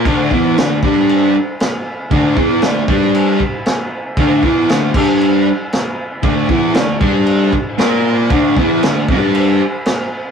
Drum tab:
CC |x-x-x-x-|x-x-x-x-|x-xxx-x-|x-x-x-x-|
SD |--o---o-|--o---o-|--o---o-|--o---o-|
BD |oo-o----|oo-o-o--|oo-o----|oo-o-o--|

CC |x-x-x-x-|
SD |--o---o-|
BD |oo-o----|